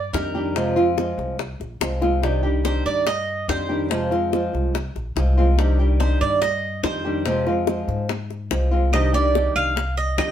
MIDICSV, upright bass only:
0, 0, Header, 1, 2, 480
1, 0, Start_track
1, 0, Key_signature, -3, "minor"
1, 0, Tempo, 418410
1, 640, Time_signature, 4, 2, 24, 8
1, 11833, End_track
2, 0, Start_track
2, 0, Title_t, "Upright bass"
2, 0, Program_c, 0, 32
2, 151, Note_on_c, 0, 41, 99
2, 1287, Note_off_c, 0, 41, 0
2, 1351, Note_on_c, 0, 36, 91
2, 1802, Note_off_c, 0, 36, 0
2, 1835, Note_on_c, 0, 34, 76
2, 2061, Note_off_c, 0, 34, 0
2, 2072, Note_on_c, 0, 36, 87
2, 3208, Note_off_c, 0, 36, 0
2, 3275, Note_on_c, 0, 43, 81
2, 3954, Note_off_c, 0, 43, 0
2, 3994, Note_on_c, 0, 41, 95
2, 5129, Note_off_c, 0, 41, 0
2, 5200, Note_on_c, 0, 36, 89
2, 5648, Note_off_c, 0, 36, 0
2, 5683, Note_on_c, 0, 34, 74
2, 5907, Note_off_c, 0, 34, 0
2, 5916, Note_on_c, 0, 36, 103
2, 7050, Note_off_c, 0, 36, 0
2, 7123, Note_on_c, 0, 43, 92
2, 7798, Note_off_c, 0, 43, 0
2, 7837, Note_on_c, 0, 41, 100
2, 8970, Note_off_c, 0, 41, 0
2, 9038, Note_on_c, 0, 44, 92
2, 9714, Note_off_c, 0, 44, 0
2, 9758, Note_on_c, 0, 36, 88
2, 10891, Note_off_c, 0, 36, 0
2, 10959, Note_on_c, 0, 36, 82
2, 11635, Note_off_c, 0, 36, 0
2, 11678, Note_on_c, 0, 41, 97
2, 11833, Note_off_c, 0, 41, 0
2, 11833, End_track
0, 0, End_of_file